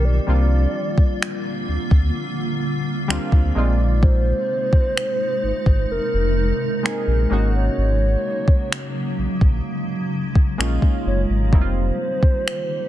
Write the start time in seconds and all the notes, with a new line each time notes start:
Already playing: B1 D#3 G3 A#3 C4 D#4 F4 G4
0.05 D5
0.27 C2 D3 G3 A#3 C4 D4 F4
0.98 kick
1.23 finger snap
1.68 D2
1.91 D2, kick
3.08 D2 G3 A#3 C4 D4 F4, finger snap
3.32 D2, kick
3.55 A#1 C3 G#3 A#3 C4 D#4 F4 D5
4.03 C5, kick
4.73 kick
4.97 finger snap
5.43 G#1
5.66 G#1, kick
5.90 F1 A#4
6.14 F1
6.83 G#3 A#3 C4 D#4 G#4 A#4, finger snap
7.07 A#1
7.30 G#1 C#3 F#3 G#3 A#3 C#4 D#4 F#4
7.55 C#5
7.78 G#1
8.48 kick
8.72 finger snap
9.18 A#1 G#3
9.41 A#1, kick
10.35 kick
10.58 A#1 G#3 A#3 C#4 D#4 F4, finger snap
10.82 kick
11.06 F#1 C#5
11.29 G#1
11.52 F1 D#3 G3 A#3 C4 D#4 E4 G4 C5, kick
11.61 F4
12.23 kick
12.48 finger snap